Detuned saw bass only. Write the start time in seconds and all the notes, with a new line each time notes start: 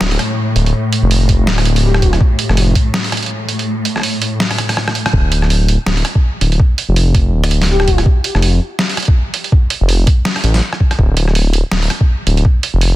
0.01 D1
0.56 D1
1.03 F1
1.47 D1
2.02 D1
2.49 F1
5.13 D1
5.86 D1
6.41 D1
6.89 F1
7.33 D1
7.88 D1
8.35 F1
9.81 F1
10.44 A1
10.99 D1
11.72 D1
12.27 D1
12.74 F1